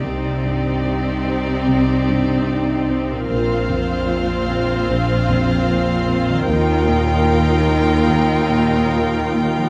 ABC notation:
X:1
M:4/4
L:1/8
Q:1/4=75
K:Cm
V:1 name="Violin section"
[Gd]8 | [cf]8 | [Bg]8 |]
V:2 name="Viola section"
[CE]8 | [CF]8 | [EF]8 |]
V:3 name="Harp"
[C,CEG]8 | [B,,CFB]8 | [E,B,Fg]8 |]
V:4 name="Grand piano" clef=bass
C,, G,, E C C,, G,, E C | B,,, F,, F C B,,, F,, F C | E,, B,, F B, E,, B,, F B, |]
V:5 name="Cello section" clef=bass
C,8 | B,,8 | E,,8 |]
V:6 name="Double bass section" clef=bass
C,,8 | B,,,8 | E,,8 |]